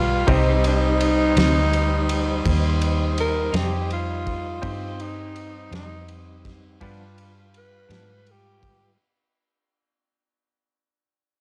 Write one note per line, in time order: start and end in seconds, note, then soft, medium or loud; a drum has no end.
0.00 0.25 B1 medium
0.00 0.24 G3 soft
0.00 0.24 G3 medium
0.00 8.95 G3 medium
0.00 0.24 D4 soft
0.00 0.33 F4 medium
0.00 0.13 B4 medium
0.00 0.24 B4 medium
0.00 0.13 F5 medium
0.00 0.24 F5 medium
0.00 0.24 F5 soft
0.27 1.34 C2 medium
0.27 0.50 C3 medium
0.27 0.49 G3 medium
0.27 4.59 G3 medium
0.27 4.59 C4 medium
0.27 0.50 C4 medium
0.27 4.59 D#4 soft
0.27 4.59 D#4 medium
0.27 0.50 D#4 medium
0.27 4.59 G4 medium
0.27 4.59 C5 medium
0.27 6.64 C5 medium
0.27 6.64 D#5 medium
0.27 kick loud
0.27 ride medium
0.32 0.65 D#4 medium
0.64 2.79 D#4 loud
0.64 ride medium
1.01 ride medium
1.36 2.42 D2 medium
1.36 1.59 C3 medium
1.36 1.58 G3 medium
1.36 1.59 C4 medium
1.36 1.58 D#4 medium
1.36 snare loud
1.36 ride medium
1.73 ride medium
2.09 ride medium
2.45 3.51 D#2 medium
2.45 kick loud
2.45 ride medium
2.81 ride medium
3.18 3.58 A#4 loud
3.18 ride medium
3.52 4.60 F2 medium
3.52 3.76 C3 medium
3.52 3.76 G3 medium
3.52 3.75 C4 medium
3.52 3.75 D#4 medium
3.52 snare loud
3.52 ride medium
3.56 3.91 G4 loud
3.90 5.03 F4 loud
3.90 ride medium
4.27 kick medium
4.27 ride medium
4.62 5.69 G2 medium
4.62 6.80 G3 medium
4.62 6.76 C4 medium
4.62 6.80 C4 medium
4.62 6.76 D#4 medium
4.62 6.79 D#4 medium
4.62 6.76 G4 medium
4.62 6.76 C5 medium
4.62 kick loud
4.62 ride medium
5.00 5.71 D#4 medium
5.00 ride medium
5.36 ride medium
5.71 6.77 F2 medium
5.71 5.94 C3 medium
5.71 5.94 G3 medium
5.71 5.94 C4 medium
5.71 5.94 D#4 medium
5.71 snare loud
5.71 ride medium
5.75 6.09 D#4 loud
6.08 ride medium
6.45 kick medium
6.45 snare soft
6.45 ride medium
6.80 7.02 G2 medium
6.80 7.87 G2 medium
6.80 7.03 F3 medium
6.80 8.97 G3 medium
6.80 7.03 B3 medium
6.80 8.94 D4 medium
6.80 7.03 D4 loud
6.80 8.95 F4 medium
6.80 8.98 F4 medium
6.80 8.95 G4 medium
6.80 8.96 B4 medium
6.80 8.95 B4 medium
6.80 8.98 B4 medium
6.80 8.97 F5 medium
6.80 kick loud
6.80 ride medium
7.18 ride medium
7.54 8.33 B4 loud
7.54 ride medium
7.88 8.11 G2 medium
7.88 8.95 G#2 medium
7.88 8.11 F3 medium
7.88 8.11 B3 medium
7.88 8.11 D4 medium
7.88 snare loud
7.88 ride medium
8.26 ride medium
8.31 8.99 G4 loud
8.63 kick medium
8.63 ride medium